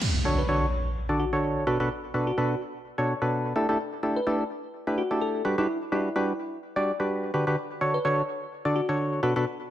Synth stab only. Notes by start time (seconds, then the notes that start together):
0.25 D3 D4 F#4 A4 C#5
0.49 D3 D4 F#4 A4 C#5
1.09 D3 D4 F#4 A4 D5
1.33 D3 D4 F#4 A4 C#5
1.67 B2 D4 F#4 A4 B4
1.80 B2 D4 F#4 A4 B4
2.14 B2 D4 F#4 A4 B4
2.38 B2 D4 F#4 A4 B4
2.98 B2 D4 F#4 A4 C#5
3.22 B2 D4 F#4 A4 B4
3.56 A3 D4 E4 G4 A4
3.69 A3 D4 E4 G4 A4
4.03 A3 D4 E4 G4 A4
4.27 A3 D4 E4 G4 A4
4.87 A3 D4 E4 G4 B4
5.11 A3 D4 E4 G4 A4
5.45 G3 D4 F#4 G4 B4
5.58 G3 D4 F#4 G4 B4
5.92 G3 D4 F#4 G4 B4
6.16 G3 D4 F#4 G4 B4
6.76 G3 D4 F#4 G4 D5
7.00 G3 D4 F#4 G4 B4
7.34 D3 D4 F#4 G4 B4
7.47 D3 D4 F#4 G4 B4
7.81 D3 D4 F#4 A4 C#5
8.05 D3 D4 F#4 A4 C#5
8.65 D3 D4 F#4 A4 D5
8.89 D3 D4 F#4 A4 C#5
9.23 B2 D4 F#4 A4 B4
9.36 B2 D4 F#4 A4 B4